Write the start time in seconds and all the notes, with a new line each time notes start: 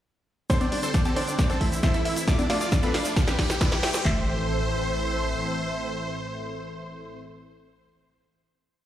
0.50 D3 G3 C4 A4 C5 C6, kick, snare, closed hi-hat, riser, shaker
0.60 G1 C4 D4 D5, closed hi-hat, high conga, shaker
0.72 G1 G3 D4 D5, open hi-hat
0.83 G1 A4 C5 C6, closed hi-hat, shaker
0.94 D4 D5, kick, snare, closed hi-hat, shaker
1.05 G1 C4 G4 A4 A5, closed hi-hat, high conga, shaker
1.16 G1 C4 D4 C5 D5, open hi-hat
1.28 G1 D4 D5, closed hi-hat, shaker
1.39 E3 A3 D4 D5, kick, snare, closed hi-hat, shaker
1.50 A1 C4 A4 A5, closed hi-hat, shaker
1.61 A1 A3 E4 E5, kick, open hi-hat
1.72 G1 E4 E5, closed hi-hat, shaker
1.83 E4 A4 C5 E5 C6, kick, snare, closed hi-hat, shaker
1.94 A1 E4 A4 E5, closed hi-hat, shaker
2.05 A1 E4 E5, open hi-hat
2.16 A1 E4 E5, closed hi-hat, shaker
2.28 F3 A3 D4 F4 D5 D6, kick, snare, closed hi-hat, shaker
2.39 D2 D4 D5, closed hi-hat, high conga, shaker
2.50 D2 A3 D4 F4 D5 F5, snare, open hi-hat
2.61 D2 F4 D5 D6, closed hi-hat, shaker
2.72 D4 F4 D5, kick, snare, closed hi-hat, shaker
2.82 D2 D4 A4 B4 B5, closed hi-hat, high conga, shaker
2.94 D2 D4 D5 F5, snare, open hi-hat
3.05 D2 D4 D5, closed hi-hat, shaker
3.16 G3 C4 D4 D5, kick, snare, closed hi-hat, shaker
3.27 C2 C4 G4 B4 B5, snare, closed hi-hat, shaker
3.39 C2 G3 G4 G5, kick, snare, open hi-hat
3.50 G1 G4 G5, snare, closed hi-hat, shaker
3.61 E4 B4 D5 D6, kick, snare, closed hi-hat, shaker
3.72 C2 G4 G5, snare, closed hi-hat, shaker
3.83 C2 G4 E5 G5, snare, open hi-hat
3.94 C2 G4 G5, snare, closed hi-hat, shaker
4.05 A1 A2 E3 A3 C4 A4 C5 E5 C6, kick, clap, impact